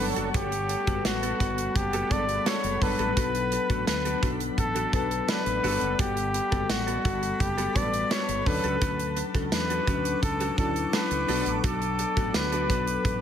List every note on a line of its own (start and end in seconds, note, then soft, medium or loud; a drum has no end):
0.00 0.12 G1 medium
0.00 0.29 F#3 loud
0.00 0.70 G3 medium
0.00 0.70 B3 medium
0.00 0.29 D4 loud
0.00 0.29 A4 loud
0.00 0.70 A4 medium
0.00 5.60 A4 medium
0.00 0.70 F#5 medium
0.00 11.25 F#5 medium
0.00 3.14 A5 medium
0.00 5.60 B5 medium
0.16 0.30 F#1 medium
0.16 0.31 B3 soft
0.16 0.31 F#4 medium
0.16 0.30 A4 medium
0.16 closed hi-hat soft
0.34 0.74 G1 loud
0.34 0.52 B3 medium
0.34 0.52 F#4 medium
0.34 1.07 G4 medium
0.34 0.51 A4 medium
0.34 kick loud
0.34 closed hi-hat loud
0.52 muted clean electric guitar stroke medium
0.52 closed hi-hat medium
0.69 muted clean electric guitar stroke soft
0.69 closed hi-hat medium
0.87 1.01 F#1 medium
0.87 1.21 G3 medium
0.87 1.21 B3 medium
0.87 1.02 B3 soft
0.87 1.22 F#4 medium
0.87 1.01 F#4 medium
0.87 1.01 A4 medium
0.87 1.22 B4 medium
0.87 kick medium
0.87 closed hi-hat medium
1.05 1.32 A1 medium
1.05 1.78 F#4 medium
1.05 muted clean electric guitar stroke soft
1.05 snare loud
1.05 closed hi-hat medium
1.23 1.37 B3 medium
1.23 1.37 F#4 medium
1.23 1.37 A4 medium
1.23 closed hi-hat soft
1.40 1.67 G1 medium
1.40 1.85 G3 medium
1.40 1.86 B3 medium
1.40 1.58 B3 medium
1.40 1.86 F#4 medium
1.40 1.58 F#4 medium
1.40 1.86 A4 medium
1.40 1.57 A4 medium
1.40 kick medium
1.40 closed hi-hat medium
1.58 muted clean electric guitar stroke soft
1.58 closed hi-hat medium
1.76 2.02 F#1 loud
1.76 2.13 G4 medium
1.76 muted clean electric guitar stroke soft
1.76 kick medium
1.76 closed hi-hat medium
1.93 2.10 B3 medium
1.93 2.11 F#4 medium
1.93 2.11 A4 medium
1.93 closed hi-hat medium
2.10 2.37 G1 medium
2.10 2.25 F#3 medium
2.10 2.67 G3 medium
2.10 2.68 B3 medium
2.10 2.25 B3 medium
2.10 2.25 D4 medium
2.10 2.68 F#4 medium
2.10 2.25 F#4 medium
2.10 2.18 G#4 medium
2.10 2.25 A4 medium
2.10 2.49 D5 loud
2.10 kick medium
2.10 closed hi-hat medium
2.18 2.71 A4 medium
2.29 muted clean electric guitar stroke soft
2.29 closed hi-hat medium
2.46 2.60 F#3 medium
2.46 2.64 B3 medium
2.46 2.60 D4 medium
2.46 2.64 F#4 medium
2.46 2.60 A4 medium
2.46 2.63 A4 loud
2.46 2.84 C#5 loud
2.46 snare loud
2.46 closed hi-hat medium
2.64 2.77 F#1 medium
2.64 muted clean electric guitar stroke medium
2.64 closed hi-hat medium
2.82 2.95 G1 medium
2.82 3.12 F#3 loud
2.82 3.12 D4 loud
2.82 3.12 A4 loud
2.82 3.88 B4 loud
2.82 muted clean electric guitar stroke soft
2.82 kick medium
2.82 open hi-hat medium
2.99 3.13 A1 medium
2.99 3.10 G3 medium
2.99 3.10 B3 medium
2.99 3.14 B3 soft
2.99 3.11 F#4 medium
2.99 3.13 F#4 medium
2.99 3.13 A4 medium
2.99 3.11 A4 medium
2.99 closed hi-hat soft
3.16 3.57 B1 loud
3.16 3.51 F#3 medium
3.16 3.51 B3 medium
3.16 3.34 D4 medium
3.16 3.51 D4 medium
3.16 3.34 F#4 medium
3.16 3.51 A4 medium
3.16 3.33 A4 medium
3.16 5.62 D5 medium
3.16 kick medium
3.16 closed hi-hat loud
3.35 closed hi-hat medium
3.52 muted clean electric guitar stroke soft
3.52 closed hi-hat medium
3.69 3.83 A1 medium
3.69 4.04 F#3 medium
3.69 4.04 B3 medium
3.69 4.04 D4 medium
3.69 3.84 D4 soft
3.69 3.84 F#4 medium
3.69 3.83 A4 medium
3.69 4.04 A4 medium
3.69 kick medium
3.69 closed hi-hat medium
3.87 4.14 D2 medium
3.87 4.28 B4 loud
3.87 snare loud
3.87 closed hi-hat loud
3.87 tambourine medium
4.05 4.19 D4 medium
4.05 4.19 F#4 medium
4.05 4.19 A4 medium
4.05 closed hi-hat soft
4.22 4.49 B1 medium
4.22 4.68 F#3 medium
4.22 4.68 B3 medium
4.22 4.40 D4 medium
4.22 4.68 D4 medium
4.22 4.40 F#4 medium
4.22 4.68 A4 medium
4.22 4.39 A4 medium
4.22 kick medium
4.22 closed hi-hat medium
4.40 muted clean electric guitar stroke soft
4.40 closed hi-hat medium
4.58 4.84 A1 medium
4.58 4.91 A4 loud
4.58 muted clean electric guitar stroke soft
4.58 kick medium
4.58 closed hi-hat medium
4.75 4.92 D4 medium
4.75 4.92 F#4 medium
4.75 4.93 A4 medium
4.75 closed hi-hat medium
4.93 5.20 B1 medium
4.93 5.50 F#3 medium
4.93 5.07 F#3 medium
4.93 5.50 B3 medium
4.93 5.07 D4 medium
4.93 5.50 D4 medium
4.93 5.07 D4 medium
4.93 5.07 F#4 medium
4.93 5.07 A4 medium
4.93 5.08 A4 medium
4.93 5.31 A4 medium
4.93 5.50 B4 medium
4.93 kick medium
4.93 closed hi-hat medium
5.11 muted clean electric guitar stroke soft
5.11 closed hi-hat medium
5.28 5.43 F#3 medium
5.28 5.43 D4 medium
5.28 5.43 A4 medium
5.28 6.02 B4 medium
5.28 muted clean electric guitar stroke soft
5.28 snare loud
5.28 closed hi-hat medium
5.28 tambourine medium
5.46 5.60 A1 medium
5.46 muted clean electric guitar stroke soft
5.46 closed hi-hat medium
5.63 5.77 G1 loud
5.63 5.94 F#3 loud
5.63 6.34 G3 medium
5.63 5.81 B3 medium
5.63 6.35 B3 medium
5.63 5.94 D4 loud
5.63 5.81 F#4 medium
5.63 5.71 G4 medium
5.63 5.94 A4 loud
5.63 11.25 A4 medium
5.63 5.80 A4 medium
5.63 6.35 F#5 medium
5.63 8.44 A5 medium
5.63 8.44 B5 medium
5.63 open hi-hat medium
5.71 6.38 A4 medium
5.81 5.95 F#1 medium
5.81 muted clean electric guitar stroke soft
5.81 closed hi-hat soft
5.99 6.39 G1 loud
5.99 6.17 B3 medium
5.99 6.16 F#4 medium
5.99 6.72 G4 loud
5.99 6.15 A4 medium
5.99 kick loud
5.99 closed hi-hat loud
6.17 muted clean electric guitar stroke soft
6.17 closed hi-hat medium
6.34 muted clean electric guitar stroke soft
6.34 closed hi-hat medium
6.51 6.65 F#1 medium
6.51 6.86 G3 medium
6.51 6.86 B3 medium
6.51 6.66 B3 soft
6.51 6.86 F#4 medium
6.51 6.66 F#4 soft
6.51 6.66 A4 medium
6.51 6.86 A4 medium
6.51 kick medium
6.51 closed hi-hat medium
6.70 6.96 A1 medium
6.70 7.42 F#4 medium
6.70 snare loud
6.70 closed hi-hat loud
6.70 tambourine medium
6.87 7.02 B3 medium
6.87 7.01 F#4 medium
6.87 7.01 A4 medium
6.87 closed hi-hat soft
7.04 7.32 G1 loud
7.04 7.50 G3 medium
7.04 7.22 B3 medium
7.04 7.50 B3 medium
7.04 7.51 F#4 medium
7.04 7.22 F#4 medium
7.04 7.51 A4 medium
7.04 7.21 A4 medium
7.04 kick medium
7.04 closed hi-hat medium
7.22 muted clean electric guitar stroke medium
7.22 closed hi-hat medium
7.40 7.67 F#1 loud
7.40 7.78 G4 loud
7.40 muted clean electric guitar stroke soft
7.40 kick medium
7.40 closed hi-hat medium
7.58 7.74 B3 medium
7.58 7.75 F#4 medium
7.58 7.75 A4 medium
7.58 closed hi-hat medium
7.75 8.02 A1 loud
7.75 7.90 F#3 medium
7.75 8.32 G3 medium
7.75 7.89 B3 medium
7.75 8.32 B3 medium
7.75 7.90 D4 medium
7.75 8.32 F#4 medium
7.75 7.90 F#4 medium
7.75 7.90 A4 medium
7.75 8.33 B4 medium
7.75 8.13 D5 loud
7.75 kick medium
7.75 closed hi-hat medium
7.93 muted clean electric guitar stroke medium
7.93 closed hi-hat medium
8.11 8.25 F#3 medium
8.11 8.28 B3 medium
8.11 8.25 D4 medium
8.11 8.28 F#4 medium
8.11 8.25 A4 medium
8.11 8.27 A4 medium
8.11 8.49 C#5 medium
8.11 snare loud
8.11 closed hi-hat medium
8.11 tambourine medium
8.28 8.42 G1 medium
8.28 muted clean electric guitar stroke medium
8.28 closed hi-hat medium
8.46 8.60 D2 medium
8.46 9.17 F#3 medium
8.46 8.76 F#3 loud
8.46 9.17 C#4 medium
8.46 8.76 D4 loud
8.46 9.17 D4 medium
8.46 8.76 A4 loud
8.46 9.17 A4 medium
8.46 9.26 B4 loud
8.46 11.26 C#6 medium
8.46 13.21 D6 medium
8.46 muted clean electric guitar stroke soft
8.46 kick medium
8.46 open hi-hat medium
8.64 8.77 C#2 medium
8.64 8.78 C#4 medium
8.64 8.78 F#4 medium
8.64 8.78 A4 medium
8.64 closed hi-hat soft
8.81 9.21 D2 loud
8.81 8.99 C#4 medium
8.81 8.99 F#4 medium
8.81 8.98 A4 medium
8.81 kick loud
8.81 closed hi-hat medium
8.99 muted clean electric guitar stroke soft
8.99 closed hi-hat medium
9.17 muted clean electric guitar stroke medium
9.17 closed hi-hat medium
9.34 9.48 C#2 medium
9.34 9.68 F#3 medium
9.34 9.69 C#4 medium
9.34 9.49 C#4 soft
9.34 9.69 D4 medium
9.34 9.49 F#4 medium
9.34 9.48 A4 medium
9.34 9.69 A4 medium
9.34 kick medium
9.34 closed hi-hat medium
9.52 9.79 E2 medium
9.52 10.19 B4 medium
9.52 muted clean electric guitar stroke soft
9.52 snare loud
9.52 closed hi-hat loud
9.52 tambourine medium
9.70 9.84 C#4 medium
9.70 9.84 F#4 medium
9.70 9.84 A4 medium
9.70 closed hi-hat soft
9.87 10.14 D2 medium
9.87 10.33 F#3 medium
9.87 10.33 C#4 medium
9.87 10.05 C#4 medium
9.87 10.33 D4 medium
9.87 10.05 F#4 medium
9.87 10.04 A4 medium
9.87 10.33 B4 medium
9.87 kick medium
9.87 closed hi-hat medium
10.05 muted clean electric guitar stroke soft
10.05 closed hi-hat medium
10.23 10.49 C#2 loud
10.23 10.56 A4 medium
10.23 muted clean electric guitar stroke soft
10.23 kick medium
10.23 closed hi-hat medium
10.40 10.57 C#4 medium
10.40 10.57 F#4 medium
10.40 10.58 A4 medium
10.40 closed hi-hat medium
10.57 10.85 D2 medium
10.57 11.14 F#3 medium
10.57 10.72 F#3 medium
10.57 11.15 C#4 medium
10.57 10.72 C#4 medium
10.57 10.72 D4 medium
10.57 11.15 D4 medium
10.57 11.15 E4 medium
10.57 10.72 F#4 medium
10.57 10.72 A4 medium
10.57 10.96 A4 medium
10.57 10.72 A4 medium
10.57 kick loud
10.57 closed hi-hat medium
10.76 closed hi-hat medium
10.93 11.07 F#3 medium
10.93 11.07 D4 medium
10.93 11.07 A4 medium
10.93 11.58 B4 medium
10.93 muted clean electric guitar stroke soft
10.93 snare loud
10.93 closed hi-hat medium
10.93 tambourine medium
11.11 11.24 C#2 medium
11.11 muted clean electric guitar stroke soft
11.11 closed hi-hat medium
11.28 11.42 B1 medium
11.28 11.99 F#3 medium
11.28 11.59 F#3 loud
11.28 11.99 B3 medium
11.28 11.46 D4 medium
11.28 11.59 D4 medium
11.28 11.99 D4 medium
11.28 11.46 F#4 loud
11.28 11.59 A4 loud
11.28 13.21 A4 medium
11.28 12.00 A4 medium
11.28 11.45 A4 medium
11.28 13.21 F#5 medium
11.28 13.21 B5 medium
11.28 open hi-hat medium
11.46 11.59 A1 medium
11.46 muted clean electric guitar stroke soft
11.46 closed hi-hat soft
11.58 11.66 B4 medium
11.64 12.04 B1 loud
11.64 11.81 D4 medium
11.64 11.81 F#4 medium
11.64 12.37 A4 medium
11.64 11.80 A4 medium
11.64 kick loud
11.64 closed hi-hat loud
11.81 muted clean electric guitar stroke soft
11.81 closed hi-hat soft
11.99 muted clean electric guitar stroke soft
11.99 closed hi-hat medium
12.16 12.30 A1 medium
12.16 12.51 F#3 medium
12.16 12.51 B3 medium
12.16 12.51 D4 medium
12.16 12.31 D4 soft
12.16 12.51 F#4 medium
12.16 12.31 F#4 medium
12.16 12.31 A4 medium
12.16 kick medium
12.16 closed hi-hat medium
12.34 12.70 D2 medium
12.34 13.21 B4 medium
12.34 snare loud
12.34 closed hi-hat loud
12.34 tambourine medium
12.52 12.66 D4 soft
12.52 12.66 F#4 medium
12.52 12.66 A4 medium
12.52 closed hi-hat medium
12.69 12.96 B1 loud
12.69 13.15 F#3 medium
12.69 13.15 B3 medium
12.69 13.15 D4 medium
12.69 12.87 D4 medium
12.69 12.87 F#4 medium
12.69 12.86 A4 medium
12.69 13.15 B4 medium
12.69 kick medium
12.69 closed hi-hat medium
12.87 muted clean electric guitar stroke soft
12.87 closed hi-hat medium
13.05 13.21 A1 medium
13.05 muted clean electric guitar stroke soft
13.05 kick medium
13.05 closed hi-hat medium